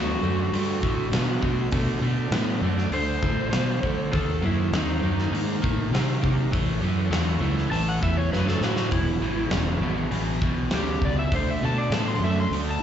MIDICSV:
0, 0, Header, 1, 6, 480
1, 0, Start_track
1, 0, Tempo, 599401
1, 1381, Time_signature, 4, 2, 24, 8
1, 10273, End_track
2, 0, Start_track
2, 0, Title_t, "Electric slide guitar"
2, 0, Program_c, 0, 29
2, 0, Note_on_c, 0, 66, 86
2, 1360, Note_off_c, 0, 66, 0
2, 2351, Note_on_c, 0, 72, 99
2, 3279, Note_off_c, 0, 72, 0
2, 3309, Note_on_c, 0, 69, 84
2, 3540, Note_off_c, 0, 69, 0
2, 3562, Note_on_c, 0, 64, 85
2, 3786, Note_off_c, 0, 64, 0
2, 3808, Note_on_c, 0, 63, 94
2, 5205, Note_off_c, 0, 63, 0
2, 6178, Note_on_c, 0, 81, 81
2, 6298, Note_off_c, 0, 81, 0
2, 6316, Note_on_c, 0, 78, 80
2, 6426, Note_off_c, 0, 78, 0
2, 6430, Note_on_c, 0, 76, 75
2, 6544, Note_off_c, 0, 76, 0
2, 6545, Note_on_c, 0, 73, 88
2, 6662, Note_off_c, 0, 73, 0
2, 6669, Note_on_c, 0, 71, 77
2, 6784, Note_off_c, 0, 71, 0
2, 6803, Note_on_c, 0, 69, 72
2, 6911, Note_off_c, 0, 69, 0
2, 6917, Note_on_c, 0, 66, 64
2, 7144, Note_off_c, 0, 66, 0
2, 7148, Note_on_c, 0, 64, 93
2, 7613, Note_off_c, 0, 64, 0
2, 8608, Note_on_c, 0, 67, 78
2, 8829, Note_off_c, 0, 67, 0
2, 8849, Note_on_c, 0, 74, 73
2, 8954, Note_off_c, 0, 74, 0
2, 8959, Note_on_c, 0, 76, 89
2, 9068, Note_off_c, 0, 76, 0
2, 9089, Note_on_c, 0, 72, 74
2, 9193, Note_off_c, 0, 72, 0
2, 9213, Note_on_c, 0, 76, 81
2, 9315, Note_off_c, 0, 76, 0
2, 9329, Note_on_c, 0, 81, 81
2, 9433, Note_off_c, 0, 81, 0
2, 9433, Note_on_c, 0, 74, 90
2, 9545, Note_off_c, 0, 74, 0
2, 9558, Note_on_c, 0, 81, 75
2, 9667, Note_off_c, 0, 81, 0
2, 9672, Note_on_c, 0, 84, 91
2, 9784, Note_off_c, 0, 84, 0
2, 9802, Note_on_c, 0, 76, 84
2, 9909, Note_off_c, 0, 76, 0
2, 9931, Note_on_c, 0, 84, 86
2, 10034, Note_off_c, 0, 84, 0
2, 10174, Note_on_c, 0, 81, 85
2, 10273, Note_off_c, 0, 81, 0
2, 10273, End_track
3, 0, Start_track
3, 0, Title_t, "Tonewheel organ"
3, 0, Program_c, 1, 16
3, 53, Note_on_c, 1, 62, 52
3, 60, Note_on_c, 1, 66, 69
3, 62, Note_on_c, 1, 57, 64
3, 677, Note_off_c, 1, 62, 0
3, 680, Note_off_c, 1, 66, 0
3, 682, Note_off_c, 1, 57, 0
3, 1376, Note_on_c, 1, 62, 77
3, 1385, Note_on_c, 1, 57, 90
3, 1390, Note_on_c, 1, 64, 91
3, 1611, Note_off_c, 1, 62, 0
3, 1616, Note_off_c, 1, 57, 0
3, 1618, Note_off_c, 1, 64, 0
3, 1724, Note_on_c, 1, 62, 72
3, 1738, Note_on_c, 1, 57, 76
3, 1742, Note_on_c, 1, 69, 95
3, 1888, Note_off_c, 1, 62, 0
3, 1895, Note_off_c, 1, 57, 0
3, 1897, Note_off_c, 1, 69, 0
3, 1997, Note_on_c, 1, 57, 83
3, 2000, Note_on_c, 1, 66, 88
3, 2001, Note_on_c, 1, 62, 67
3, 2610, Note_off_c, 1, 57, 0
3, 2612, Note_off_c, 1, 66, 0
3, 2613, Note_off_c, 1, 62, 0
3, 3326, Note_on_c, 1, 66, 84
3, 3329, Note_on_c, 1, 57, 68
3, 3329, Note_on_c, 1, 60, 64
3, 3548, Note_off_c, 1, 66, 0
3, 3549, Note_off_c, 1, 57, 0
3, 3549, Note_off_c, 1, 60, 0
3, 3642, Note_on_c, 1, 57, 67
3, 3651, Note_on_c, 1, 60, 59
3, 3653, Note_on_c, 1, 66, 71
3, 3808, Note_off_c, 1, 57, 0
3, 3813, Note_off_c, 1, 60, 0
3, 3814, Note_off_c, 1, 66, 0
3, 3909, Note_on_c, 1, 66, 75
3, 3910, Note_on_c, 1, 69, 60
3, 3914, Note_on_c, 1, 60, 57
3, 4528, Note_off_c, 1, 66, 0
3, 4528, Note_off_c, 1, 69, 0
3, 4530, Note_off_c, 1, 60, 0
3, 5219, Note_on_c, 1, 61, 81
3, 5221, Note_on_c, 1, 57, 82
3, 5224, Note_on_c, 1, 64, 91
3, 5455, Note_off_c, 1, 61, 0
3, 5456, Note_off_c, 1, 57, 0
3, 5458, Note_off_c, 1, 64, 0
3, 5583, Note_on_c, 1, 66, 77
3, 5587, Note_on_c, 1, 61, 71
3, 5588, Note_on_c, 1, 57, 82
3, 5739, Note_off_c, 1, 66, 0
3, 5742, Note_off_c, 1, 57, 0
3, 5742, Note_off_c, 1, 61, 0
3, 5817, Note_on_c, 1, 64, 81
3, 5821, Note_on_c, 1, 57, 76
3, 5830, Note_on_c, 1, 61, 71
3, 6442, Note_off_c, 1, 64, 0
3, 6444, Note_off_c, 1, 57, 0
3, 6448, Note_off_c, 1, 61, 0
3, 7137, Note_on_c, 1, 59, 63
3, 7140, Note_on_c, 1, 64, 78
3, 7147, Note_on_c, 1, 56, 71
3, 7374, Note_off_c, 1, 59, 0
3, 7375, Note_off_c, 1, 64, 0
3, 7379, Note_off_c, 1, 56, 0
3, 7487, Note_on_c, 1, 59, 57
3, 7494, Note_on_c, 1, 56, 65
3, 7499, Note_on_c, 1, 64, 71
3, 7652, Note_off_c, 1, 59, 0
3, 7655, Note_off_c, 1, 56, 0
3, 7657, Note_off_c, 1, 64, 0
3, 7737, Note_on_c, 1, 59, 73
3, 7739, Note_on_c, 1, 64, 85
3, 7747, Note_on_c, 1, 56, 70
3, 8361, Note_off_c, 1, 59, 0
3, 8362, Note_off_c, 1, 64, 0
3, 8366, Note_off_c, 1, 56, 0
3, 9062, Note_on_c, 1, 57, 67
3, 9069, Note_on_c, 1, 66, 84
3, 9071, Note_on_c, 1, 62, 59
3, 9296, Note_off_c, 1, 57, 0
3, 9299, Note_off_c, 1, 66, 0
3, 9300, Note_off_c, 1, 62, 0
3, 9412, Note_on_c, 1, 62, 62
3, 9413, Note_on_c, 1, 64, 65
3, 9421, Note_on_c, 1, 57, 68
3, 9573, Note_off_c, 1, 62, 0
3, 9573, Note_off_c, 1, 64, 0
3, 9577, Note_off_c, 1, 57, 0
3, 9639, Note_on_c, 1, 62, 60
3, 9641, Note_on_c, 1, 57, 66
3, 9642, Note_on_c, 1, 69, 73
3, 10271, Note_off_c, 1, 57, 0
3, 10271, Note_off_c, 1, 62, 0
3, 10272, Note_off_c, 1, 69, 0
3, 10273, End_track
4, 0, Start_track
4, 0, Title_t, "Overdriven electric guitar"
4, 0, Program_c, 2, 29
4, 0, Note_on_c, 2, 50, 70
4, 0, Note_on_c, 2, 59, 83
4, 157, Note_off_c, 2, 50, 0
4, 160, Note_off_c, 2, 59, 0
4, 178, Note_on_c, 2, 50, 70
4, 184, Note_on_c, 2, 57, 67
4, 395, Note_off_c, 2, 50, 0
4, 398, Note_off_c, 2, 57, 0
4, 429, Note_on_c, 2, 57, 78
4, 431, Note_on_c, 2, 50, 72
4, 640, Note_off_c, 2, 57, 0
4, 642, Note_off_c, 2, 50, 0
4, 659, Note_on_c, 2, 57, 82
4, 660, Note_on_c, 2, 50, 76
4, 876, Note_off_c, 2, 50, 0
4, 876, Note_off_c, 2, 57, 0
4, 897, Note_on_c, 2, 50, 80
4, 899, Note_on_c, 2, 59, 85
4, 1115, Note_off_c, 2, 50, 0
4, 1116, Note_off_c, 2, 59, 0
4, 1131, Note_on_c, 2, 50, 87
4, 1137, Note_on_c, 2, 57, 79
4, 1352, Note_off_c, 2, 50, 0
4, 1355, Note_off_c, 2, 57, 0
4, 1380, Note_on_c, 2, 50, 80
4, 1384, Note_on_c, 2, 57, 80
4, 1597, Note_off_c, 2, 50, 0
4, 1599, Note_off_c, 2, 57, 0
4, 1621, Note_on_c, 2, 50, 70
4, 1624, Note_on_c, 2, 57, 74
4, 1837, Note_off_c, 2, 50, 0
4, 1839, Note_off_c, 2, 57, 0
4, 1864, Note_on_c, 2, 50, 78
4, 1868, Note_on_c, 2, 59, 89
4, 2079, Note_off_c, 2, 50, 0
4, 2081, Note_off_c, 2, 59, 0
4, 2106, Note_on_c, 2, 57, 80
4, 2107, Note_on_c, 2, 50, 71
4, 2320, Note_off_c, 2, 57, 0
4, 2321, Note_off_c, 2, 50, 0
4, 2348, Note_on_c, 2, 50, 78
4, 2349, Note_on_c, 2, 57, 92
4, 2562, Note_off_c, 2, 50, 0
4, 2562, Note_off_c, 2, 57, 0
4, 2583, Note_on_c, 2, 50, 75
4, 2587, Note_on_c, 2, 57, 86
4, 2799, Note_off_c, 2, 50, 0
4, 2801, Note_off_c, 2, 57, 0
4, 2814, Note_on_c, 2, 50, 84
4, 2819, Note_on_c, 2, 59, 106
4, 3035, Note_off_c, 2, 50, 0
4, 3037, Note_off_c, 2, 59, 0
4, 3065, Note_on_c, 2, 50, 73
4, 3071, Note_on_c, 2, 57, 83
4, 3281, Note_off_c, 2, 50, 0
4, 3283, Note_off_c, 2, 57, 0
4, 3296, Note_on_c, 2, 51, 69
4, 3305, Note_on_c, 2, 58, 79
4, 3516, Note_off_c, 2, 51, 0
4, 3521, Note_off_c, 2, 58, 0
4, 3541, Note_on_c, 2, 51, 70
4, 3544, Note_on_c, 2, 58, 70
4, 3759, Note_off_c, 2, 51, 0
4, 3760, Note_off_c, 2, 58, 0
4, 3789, Note_on_c, 2, 51, 83
4, 3791, Note_on_c, 2, 60, 85
4, 4003, Note_off_c, 2, 51, 0
4, 4004, Note_off_c, 2, 60, 0
4, 4029, Note_on_c, 2, 51, 65
4, 4029, Note_on_c, 2, 58, 72
4, 4243, Note_off_c, 2, 51, 0
4, 4243, Note_off_c, 2, 58, 0
4, 4267, Note_on_c, 2, 51, 75
4, 4268, Note_on_c, 2, 58, 80
4, 4482, Note_off_c, 2, 51, 0
4, 4483, Note_off_c, 2, 58, 0
4, 4503, Note_on_c, 2, 58, 89
4, 4506, Note_on_c, 2, 51, 68
4, 4720, Note_off_c, 2, 58, 0
4, 4722, Note_off_c, 2, 51, 0
4, 4750, Note_on_c, 2, 51, 90
4, 4756, Note_on_c, 2, 60, 99
4, 4964, Note_off_c, 2, 51, 0
4, 4967, Note_off_c, 2, 60, 0
4, 4974, Note_on_c, 2, 51, 85
4, 4980, Note_on_c, 2, 58, 81
4, 5196, Note_off_c, 2, 51, 0
4, 5199, Note_off_c, 2, 58, 0
4, 5215, Note_on_c, 2, 45, 70
4, 5219, Note_on_c, 2, 52, 76
4, 5437, Note_off_c, 2, 45, 0
4, 5439, Note_off_c, 2, 52, 0
4, 5453, Note_on_c, 2, 45, 64
4, 5456, Note_on_c, 2, 52, 79
4, 5676, Note_off_c, 2, 45, 0
4, 5677, Note_off_c, 2, 52, 0
4, 5692, Note_on_c, 2, 45, 73
4, 5696, Note_on_c, 2, 54, 91
4, 5915, Note_off_c, 2, 45, 0
4, 5917, Note_off_c, 2, 54, 0
4, 5930, Note_on_c, 2, 45, 63
4, 5933, Note_on_c, 2, 52, 75
4, 6154, Note_off_c, 2, 45, 0
4, 6156, Note_off_c, 2, 52, 0
4, 6175, Note_on_c, 2, 45, 73
4, 6176, Note_on_c, 2, 52, 84
4, 6397, Note_off_c, 2, 45, 0
4, 6397, Note_off_c, 2, 52, 0
4, 6420, Note_on_c, 2, 45, 72
4, 6424, Note_on_c, 2, 52, 75
4, 6639, Note_off_c, 2, 45, 0
4, 6641, Note_off_c, 2, 52, 0
4, 6668, Note_on_c, 2, 45, 77
4, 6669, Note_on_c, 2, 54, 90
4, 6883, Note_off_c, 2, 45, 0
4, 6884, Note_off_c, 2, 54, 0
4, 6907, Note_on_c, 2, 45, 66
4, 6913, Note_on_c, 2, 52, 84
4, 7122, Note_off_c, 2, 45, 0
4, 7125, Note_off_c, 2, 52, 0
4, 7149, Note_on_c, 2, 40, 58
4, 7152, Note_on_c, 2, 47, 77
4, 7363, Note_off_c, 2, 40, 0
4, 7365, Note_off_c, 2, 47, 0
4, 7379, Note_on_c, 2, 40, 76
4, 7387, Note_on_c, 2, 47, 82
4, 7598, Note_off_c, 2, 40, 0
4, 7602, Note_off_c, 2, 47, 0
4, 7625, Note_on_c, 2, 40, 81
4, 7633, Note_on_c, 2, 49, 90
4, 7842, Note_off_c, 2, 40, 0
4, 7845, Note_off_c, 2, 49, 0
4, 7865, Note_on_c, 2, 40, 70
4, 7870, Note_on_c, 2, 47, 72
4, 8081, Note_off_c, 2, 40, 0
4, 8084, Note_off_c, 2, 47, 0
4, 8097, Note_on_c, 2, 40, 70
4, 8102, Note_on_c, 2, 47, 86
4, 8317, Note_off_c, 2, 40, 0
4, 8320, Note_off_c, 2, 47, 0
4, 8344, Note_on_c, 2, 40, 72
4, 8350, Note_on_c, 2, 47, 86
4, 8561, Note_off_c, 2, 40, 0
4, 8564, Note_off_c, 2, 47, 0
4, 8593, Note_on_c, 2, 40, 79
4, 8594, Note_on_c, 2, 49, 93
4, 8805, Note_off_c, 2, 40, 0
4, 8805, Note_off_c, 2, 49, 0
4, 8832, Note_on_c, 2, 40, 83
4, 8841, Note_on_c, 2, 47, 85
4, 9044, Note_off_c, 2, 40, 0
4, 9049, Note_off_c, 2, 47, 0
4, 9073, Note_on_c, 2, 50, 77
4, 9077, Note_on_c, 2, 57, 82
4, 9285, Note_off_c, 2, 50, 0
4, 9287, Note_off_c, 2, 57, 0
4, 9314, Note_on_c, 2, 50, 71
4, 9316, Note_on_c, 2, 57, 75
4, 9525, Note_off_c, 2, 50, 0
4, 9526, Note_off_c, 2, 57, 0
4, 9555, Note_on_c, 2, 59, 78
4, 9557, Note_on_c, 2, 50, 88
4, 9765, Note_off_c, 2, 59, 0
4, 9766, Note_off_c, 2, 50, 0
4, 9804, Note_on_c, 2, 50, 66
4, 9807, Note_on_c, 2, 57, 74
4, 10010, Note_off_c, 2, 50, 0
4, 10011, Note_off_c, 2, 57, 0
4, 10032, Note_on_c, 2, 50, 88
4, 10037, Note_on_c, 2, 57, 83
4, 10243, Note_off_c, 2, 50, 0
4, 10246, Note_off_c, 2, 57, 0
4, 10273, End_track
5, 0, Start_track
5, 0, Title_t, "Fingered electric bass"
5, 0, Program_c, 3, 33
5, 0, Note_on_c, 3, 38, 96
5, 144, Note_off_c, 3, 38, 0
5, 167, Note_on_c, 3, 42, 76
5, 384, Note_off_c, 3, 42, 0
5, 417, Note_on_c, 3, 43, 94
5, 629, Note_off_c, 3, 43, 0
5, 661, Note_on_c, 3, 45, 75
5, 872, Note_off_c, 3, 45, 0
5, 894, Note_on_c, 3, 47, 85
5, 1108, Note_off_c, 3, 47, 0
5, 1135, Note_on_c, 3, 47, 82
5, 1349, Note_off_c, 3, 47, 0
5, 1376, Note_on_c, 3, 47, 92
5, 1590, Note_off_c, 3, 47, 0
5, 1613, Note_on_c, 3, 47, 82
5, 1828, Note_off_c, 3, 47, 0
5, 1847, Note_on_c, 3, 45, 82
5, 2065, Note_off_c, 3, 45, 0
5, 2094, Note_on_c, 3, 42, 91
5, 2309, Note_off_c, 3, 42, 0
5, 2328, Note_on_c, 3, 38, 84
5, 2546, Note_off_c, 3, 38, 0
5, 2580, Note_on_c, 3, 45, 81
5, 2792, Note_off_c, 3, 45, 0
5, 2819, Note_on_c, 3, 47, 82
5, 3032, Note_off_c, 3, 47, 0
5, 3065, Note_on_c, 3, 50, 79
5, 3276, Note_off_c, 3, 50, 0
5, 3302, Note_on_c, 3, 39, 86
5, 3514, Note_off_c, 3, 39, 0
5, 3537, Note_on_c, 3, 42, 92
5, 3751, Note_off_c, 3, 42, 0
5, 3777, Note_on_c, 3, 39, 91
5, 3992, Note_off_c, 3, 39, 0
5, 4018, Note_on_c, 3, 42, 84
5, 4232, Note_off_c, 3, 42, 0
5, 4254, Note_on_c, 3, 44, 84
5, 4470, Note_off_c, 3, 44, 0
5, 4512, Note_on_c, 3, 45, 80
5, 4720, Note_off_c, 3, 45, 0
5, 4729, Note_on_c, 3, 48, 74
5, 4948, Note_off_c, 3, 48, 0
5, 4985, Note_on_c, 3, 48, 77
5, 5196, Note_off_c, 3, 48, 0
5, 5223, Note_on_c, 3, 33, 95
5, 5436, Note_off_c, 3, 33, 0
5, 5454, Note_on_c, 3, 42, 89
5, 5671, Note_off_c, 3, 42, 0
5, 5690, Note_on_c, 3, 40, 85
5, 5908, Note_off_c, 3, 40, 0
5, 5929, Note_on_c, 3, 37, 88
5, 6148, Note_off_c, 3, 37, 0
5, 6171, Note_on_c, 3, 33, 88
5, 6389, Note_off_c, 3, 33, 0
5, 6423, Note_on_c, 3, 40, 79
5, 6635, Note_off_c, 3, 40, 0
5, 6660, Note_on_c, 3, 42, 80
5, 6874, Note_off_c, 3, 42, 0
5, 6894, Note_on_c, 3, 45, 88
5, 7110, Note_off_c, 3, 45, 0
5, 7138, Note_on_c, 3, 28, 83
5, 7353, Note_off_c, 3, 28, 0
5, 7375, Note_on_c, 3, 32, 91
5, 7591, Note_off_c, 3, 32, 0
5, 7612, Note_on_c, 3, 28, 84
5, 7829, Note_off_c, 3, 28, 0
5, 7851, Note_on_c, 3, 32, 91
5, 8068, Note_off_c, 3, 32, 0
5, 8094, Note_on_c, 3, 33, 101
5, 8310, Note_off_c, 3, 33, 0
5, 8341, Note_on_c, 3, 35, 75
5, 8554, Note_off_c, 3, 35, 0
5, 8565, Note_on_c, 3, 38, 77
5, 8785, Note_off_c, 3, 38, 0
5, 8819, Note_on_c, 3, 37, 81
5, 9032, Note_off_c, 3, 37, 0
5, 9060, Note_on_c, 3, 38, 86
5, 9273, Note_off_c, 3, 38, 0
5, 9300, Note_on_c, 3, 47, 86
5, 9513, Note_off_c, 3, 47, 0
5, 9529, Note_on_c, 3, 45, 89
5, 9746, Note_off_c, 3, 45, 0
5, 9767, Note_on_c, 3, 42, 86
5, 9985, Note_off_c, 3, 42, 0
5, 10016, Note_on_c, 3, 38, 92
5, 10230, Note_off_c, 3, 38, 0
5, 10273, End_track
6, 0, Start_track
6, 0, Title_t, "Drums"
6, 429, Note_on_c, 9, 46, 57
6, 510, Note_off_c, 9, 46, 0
6, 665, Note_on_c, 9, 36, 85
6, 745, Note_off_c, 9, 36, 0
6, 903, Note_on_c, 9, 46, 60
6, 907, Note_on_c, 9, 38, 105
6, 983, Note_off_c, 9, 46, 0
6, 987, Note_off_c, 9, 38, 0
6, 1141, Note_on_c, 9, 36, 80
6, 1222, Note_off_c, 9, 36, 0
6, 1373, Note_on_c, 9, 46, 55
6, 1381, Note_on_c, 9, 36, 103
6, 1453, Note_off_c, 9, 46, 0
6, 1461, Note_off_c, 9, 36, 0
6, 1857, Note_on_c, 9, 46, 53
6, 1860, Note_on_c, 9, 38, 112
6, 1937, Note_off_c, 9, 46, 0
6, 1940, Note_off_c, 9, 38, 0
6, 2227, Note_on_c, 9, 38, 33
6, 2307, Note_off_c, 9, 38, 0
6, 2338, Note_on_c, 9, 46, 59
6, 2418, Note_off_c, 9, 46, 0
6, 2583, Note_on_c, 9, 36, 89
6, 2663, Note_off_c, 9, 36, 0
6, 2823, Note_on_c, 9, 46, 57
6, 2827, Note_on_c, 9, 38, 119
6, 2903, Note_off_c, 9, 46, 0
6, 2907, Note_off_c, 9, 38, 0
6, 3069, Note_on_c, 9, 36, 73
6, 3149, Note_off_c, 9, 36, 0
6, 3310, Note_on_c, 9, 36, 114
6, 3313, Note_on_c, 9, 46, 49
6, 3390, Note_off_c, 9, 36, 0
6, 3393, Note_off_c, 9, 46, 0
6, 3789, Note_on_c, 9, 46, 49
6, 3792, Note_on_c, 9, 38, 114
6, 3869, Note_off_c, 9, 46, 0
6, 3872, Note_off_c, 9, 38, 0
6, 4155, Note_on_c, 9, 38, 30
6, 4235, Note_off_c, 9, 38, 0
6, 4282, Note_on_c, 9, 46, 57
6, 4362, Note_off_c, 9, 46, 0
6, 4515, Note_on_c, 9, 36, 89
6, 4596, Note_off_c, 9, 36, 0
6, 4760, Note_on_c, 9, 46, 59
6, 4764, Note_on_c, 9, 38, 102
6, 4840, Note_off_c, 9, 46, 0
6, 4844, Note_off_c, 9, 38, 0
6, 4994, Note_on_c, 9, 36, 83
6, 5074, Note_off_c, 9, 36, 0
6, 5232, Note_on_c, 9, 36, 109
6, 5234, Note_on_c, 9, 46, 59
6, 5312, Note_off_c, 9, 36, 0
6, 5314, Note_off_c, 9, 46, 0
6, 5706, Note_on_c, 9, 46, 61
6, 5709, Note_on_c, 9, 38, 105
6, 5786, Note_off_c, 9, 46, 0
6, 5789, Note_off_c, 9, 38, 0
6, 6069, Note_on_c, 9, 38, 28
6, 6149, Note_off_c, 9, 38, 0
6, 6188, Note_on_c, 9, 46, 59
6, 6268, Note_off_c, 9, 46, 0
6, 6428, Note_on_c, 9, 36, 83
6, 6508, Note_off_c, 9, 36, 0
6, 6672, Note_on_c, 9, 38, 58
6, 6752, Note_off_c, 9, 38, 0
6, 6790, Note_on_c, 9, 38, 59
6, 6870, Note_off_c, 9, 38, 0
6, 6902, Note_on_c, 9, 38, 74
6, 6982, Note_off_c, 9, 38, 0
6, 7019, Note_on_c, 9, 38, 83
6, 7099, Note_off_c, 9, 38, 0
6, 7135, Note_on_c, 9, 46, 51
6, 7143, Note_on_c, 9, 36, 98
6, 7215, Note_off_c, 9, 46, 0
6, 7223, Note_off_c, 9, 36, 0
6, 7614, Note_on_c, 9, 46, 54
6, 7617, Note_on_c, 9, 38, 116
6, 7694, Note_off_c, 9, 46, 0
6, 7698, Note_off_c, 9, 38, 0
6, 8100, Note_on_c, 9, 46, 53
6, 8180, Note_off_c, 9, 46, 0
6, 8342, Note_on_c, 9, 36, 89
6, 8422, Note_off_c, 9, 36, 0
6, 8574, Note_on_c, 9, 46, 57
6, 8577, Note_on_c, 9, 38, 109
6, 8654, Note_off_c, 9, 46, 0
6, 8657, Note_off_c, 9, 38, 0
6, 8823, Note_on_c, 9, 36, 71
6, 8903, Note_off_c, 9, 36, 0
6, 9063, Note_on_c, 9, 46, 54
6, 9064, Note_on_c, 9, 36, 102
6, 9143, Note_off_c, 9, 46, 0
6, 9144, Note_off_c, 9, 36, 0
6, 9544, Note_on_c, 9, 46, 61
6, 9547, Note_on_c, 9, 38, 109
6, 9624, Note_off_c, 9, 46, 0
6, 9628, Note_off_c, 9, 38, 0
6, 10032, Note_on_c, 9, 46, 59
6, 10112, Note_off_c, 9, 46, 0
6, 10273, End_track
0, 0, End_of_file